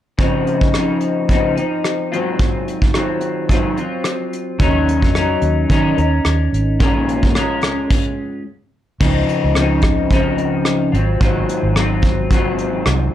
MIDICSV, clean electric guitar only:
0, 0, Header, 1, 2, 480
1, 0, Start_track
1, 0, Key_signature, -5, "major"
1, 0, Tempo, 550964
1, 164, Time_signature, 4, 2, 24, 8
1, 11449, End_track
2, 0, Start_track
2, 0, Title_t, "Clean electric guitar"
2, 0, Program_c, 0, 27
2, 158, Note_on_c, 0, 49, 74
2, 166, Note_on_c, 0, 53, 73
2, 173, Note_on_c, 0, 60, 80
2, 183, Note_on_c, 0, 63, 76
2, 629, Note_off_c, 0, 49, 0
2, 639, Note_on_c, 0, 49, 49
2, 652, Note_off_c, 0, 53, 0
2, 655, Note_on_c, 0, 53, 52
2, 659, Note_off_c, 0, 60, 0
2, 662, Note_on_c, 0, 60, 52
2, 665, Note_off_c, 0, 63, 0
2, 673, Note_on_c, 0, 63, 51
2, 1113, Note_off_c, 0, 49, 0
2, 1123, Note_on_c, 0, 49, 68
2, 1128, Note_off_c, 0, 53, 0
2, 1131, Note_on_c, 0, 53, 71
2, 1136, Note_off_c, 0, 60, 0
2, 1139, Note_on_c, 0, 60, 72
2, 1143, Note_off_c, 0, 63, 0
2, 1147, Note_on_c, 0, 63, 76
2, 1345, Note_off_c, 0, 63, 0
2, 1356, Note_on_c, 0, 63, 48
2, 1364, Note_off_c, 0, 49, 0
2, 1364, Note_off_c, 0, 60, 0
2, 1368, Note_off_c, 0, 53, 0
2, 1375, Note_on_c, 0, 60, 39
2, 1388, Note_on_c, 0, 53, 39
2, 1841, Note_off_c, 0, 63, 0
2, 1844, Note_on_c, 0, 65, 65
2, 1847, Note_off_c, 0, 60, 0
2, 1850, Note_on_c, 0, 60, 57
2, 1853, Note_off_c, 0, 53, 0
2, 1857, Note_on_c, 0, 54, 54
2, 1860, Note_on_c, 0, 51, 52
2, 1866, Note_on_c, 0, 44, 52
2, 2551, Note_off_c, 0, 51, 0
2, 2555, Note_on_c, 0, 51, 51
2, 2564, Note_off_c, 0, 54, 0
2, 2564, Note_off_c, 0, 65, 0
2, 2567, Note_off_c, 0, 60, 0
2, 2567, Note_on_c, 0, 54, 51
2, 2575, Note_off_c, 0, 44, 0
2, 2579, Note_on_c, 0, 60, 56
2, 2587, Note_on_c, 0, 65, 50
2, 3038, Note_on_c, 0, 44, 68
2, 3039, Note_off_c, 0, 51, 0
2, 3042, Note_on_c, 0, 51, 75
2, 3043, Note_off_c, 0, 60, 0
2, 3044, Note_off_c, 0, 54, 0
2, 3047, Note_off_c, 0, 65, 0
2, 3048, Note_on_c, 0, 54, 79
2, 3053, Note_on_c, 0, 60, 71
2, 3057, Note_on_c, 0, 65, 80
2, 3270, Note_off_c, 0, 65, 0
2, 3280, Note_on_c, 0, 65, 46
2, 3281, Note_off_c, 0, 44, 0
2, 3283, Note_off_c, 0, 51, 0
2, 3286, Note_off_c, 0, 54, 0
2, 3286, Note_off_c, 0, 60, 0
2, 3297, Note_on_c, 0, 60, 43
2, 3312, Note_on_c, 0, 54, 35
2, 3997, Note_on_c, 0, 51, 76
2, 4002, Note_off_c, 0, 54, 0
2, 4003, Note_off_c, 0, 65, 0
2, 4005, Note_on_c, 0, 54, 75
2, 4007, Note_off_c, 0, 60, 0
2, 4010, Note_on_c, 0, 61, 78
2, 4015, Note_on_c, 0, 63, 76
2, 4023, Note_on_c, 0, 70, 84
2, 4466, Note_off_c, 0, 54, 0
2, 4477, Note_on_c, 0, 54, 51
2, 4485, Note_off_c, 0, 61, 0
2, 4489, Note_on_c, 0, 61, 49
2, 4499, Note_off_c, 0, 63, 0
2, 4503, Note_on_c, 0, 63, 49
2, 4508, Note_off_c, 0, 70, 0
2, 4511, Note_on_c, 0, 70, 54
2, 4515, Note_off_c, 0, 51, 0
2, 4957, Note_off_c, 0, 54, 0
2, 4961, Note_on_c, 0, 51, 72
2, 4967, Note_off_c, 0, 61, 0
2, 4967, Note_on_c, 0, 54, 79
2, 4971, Note_on_c, 0, 61, 72
2, 4974, Note_off_c, 0, 63, 0
2, 4977, Note_off_c, 0, 70, 0
2, 4977, Note_on_c, 0, 63, 75
2, 4980, Note_on_c, 0, 70, 77
2, 5184, Note_off_c, 0, 70, 0
2, 5195, Note_on_c, 0, 70, 51
2, 5202, Note_off_c, 0, 63, 0
2, 5203, Note_off_c, 0, 51, 0
2, 5206, Note_off_c, 0, 54, 0
2, 5208, Note_off_c, 0, 61, 0
2, 5213, Note_on_c, 0, 63, 48
2, 5228, Note_on_c, 0, 61, 37
2, 5920, Note_on_c, 0, 46, 74
2, 5924, Note_on_c, 0, 51, 73
2, 5926, Note_on_c, 0, 56, 85
2, 5930, Note_off_c, 0, 61, 0
2, 5934, Note_off_c, 0, 63, 0
2, 5934, Note_on_c, 0, 61, 78
2, 5935, Note_off_c, 0, 70, 0
2, 5937, Note_on_c, 0, 65, 80
2, 5939, Note_on_c, 0, 70, 83
2, 6397, Note_off_c, 0, 56, 0
2, 6400, Note_on_c, 0, 56, 47
2, 6403, Note_off_c, 0, 46, 0
2, 6407, Note_off_c, 0, 61, 0
2, 6411, Note_on_c, 0, 61, 53
2, 6412, Note_off_c, 0, 70, 0
2, 6418, Note_off_c, 0, 65, 0
2, 6421, Note_on_c, 0, 65, 52
2, 6432, Note_on_c, 0, 70, 55
2, 6437, Note_off_c, 0, 51, 0
2, 6899, Note_off_c, 0, 70, 0
2, 7335, Note_off_c, 0, 56, 0
2, 7335, Note_off_c, 0, 61, 0
2, 7335, Note_off_c, 0, 65, 0
2, 7844, Note_on_c, 0, 49, 70
2, 7851, Note_on_c, 0, 53, 74
2, 7857, Note_on_c, 0, 60, 77
2, 7866, Note_on_c, 0, 63, 79
2, 8309, Note_off_c, 0, 49, 0
2, 8320, Note_on_c, 0, 49, 53
2, 8326, Note_off_c, 0, 53, 0
2, 8329, Note_on_c, 0, 53, 52
2, 8338, Note_off_c, 0, 60, 0
2, 8342, Note_on_c, 0, 60, 55
2, 8346, Note_off_c, 0, 63, 0
2, 8352, Note_on_c, 0, 63, 54
2, 8795, Note_off_c, 0, 49, 0
2, 8805, Note_on_c, 0, 49, 69
2, 8810, Note_off_c, 0, 53, 0
2, 8813, Note_on_c, 0, 53, 81
2, 8816, Note_off_c, 0, 60, 0
2, 8820, Note_on_c, 0, 60, 77
2, 8823, Note_off_c, 0, 63, 0
2, 8827, Note_on_c, 0, 63, 80
2, 9510, Note_off_c, 0, 63, 0
2, 9513, Note_on_c, 0, 65, 52
2, 9527, Note_off_c, 0, 49, 0
2, 9530, Note_off_c, 0, 60, 0
2, 9534, Note_on_c, 0, 60, 47
2, 9546, Note_off_c, 0, 53, 0
2, 9549, Note_on_c, 0, 54, 39
2, 9760, Note_on_c, 0, 44, 71
2, 9761, Note_off_c, 0, 65, 0
2, 9763, Note_off_c, 0, 54, 0
2, 9767, Note_off_c, 0, 60, 0
2, 9767, Note_on_c, 0, 51, 86
2, 9773, Note_on_c, 0, 54, 82
2, 9778, Note_on_c, 0, 60, 80
2, 9781, Note_on_c, 0, 65, 85
2, 10234, Note_off_c, 0, 51, 0
2, 10237, Note_on_c, 0, 51, 50
2, 10244, Note_off_c, 0, 44, 0
2, 10246, Note_off_c, 0, 54, 0
2, 10249, Note_on_c, 0, 54, 56
2, 10251, Note_off_c, 0, 60, 0
2, 10255, Note_off_c, 0, 65, 0
2, 10261, Note_on_c, 0, 60, 61
2, 10267, Note_on_c, 0, 65, 55
2, 10723, Note_on_c, 0, 44, 82
2, 10727, Note_off_c, 0, 51, 0
2, 10730, Note_on_c, 0, 51, 71
2, 10732, Note_off_c, 0, 60, 0
2, 10734, Note_off_c, 0, 54, 0
2, 10737, Note_on_c, 0, 54, 81
2, 10738, Note_off_c, 0, 65, 0
2, 10742, Note_on_c, 0, 60, 83
2, 10747, Note_on_c, 0, 65, 80
2, 11428, Note_off_c, 0, 65, 0
2, 11445, Note_off_c, 0, 60, 0
2, 11446, Note_off_c, 0, 44, 0
2, 11449, Note_off_c, 0, 51, 0
2, 11449, Note_off_c, 0, 54, 0
2, 11449, End_track
0, 0, End_of_file